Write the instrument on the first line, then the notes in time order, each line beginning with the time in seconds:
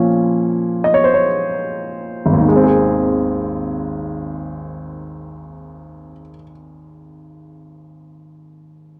grand piano
Already playing: A#2 F3 C#4 C#5
0.84 D#5
0.94 C#5
1.04 C5
1.14 C#5
2.26 G#1
2.33 D#2
2.41 D#3
2.48 G#3
2.56 C4
2.64 G#4